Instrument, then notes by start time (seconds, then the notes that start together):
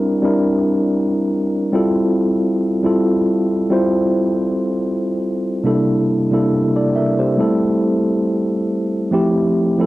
tine electric piano
Already playing: G3 C4 D4 E4 A#4
0.22 G3 C4 D4 E4 A#4
1.72 G3 C4 E4 F4 A4
2.83 G3 C4 E4 F4 A4
3.70 G3 C4 E4 F4 C5
5.64 C3 G3 A#3 D4 E4 A4
6.31 C3 G3 A#3 D4 E4 A4
6.76 A4 D5
6.96 A#4 E5
7.19 G4 C5
7.37 G3 A3 C4 E4 A4
9.11 F3 A3 C4 E4 G4
9.78 F3 A3 C4 E4 A4